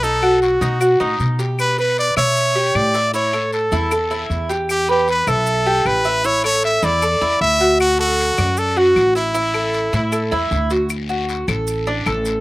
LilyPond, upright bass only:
\new Staff \with { instrumentName = "Upright bass" } { \clef bass \time 4/4 \key a \mixolydian \tempo 4 = 155 b,,4. b,4 a,8 b,4~ | b,4. b,4. a,4~ | a,4. e,4. e,4~ | e,4. b,,4. a,,4~ |
a,,4. e,4 e,8 d,4~ | d,4. fis,4. a,,4~ | a,,4. a,4 e,8 d,4~ | d,4. a,,4. a,,4 | }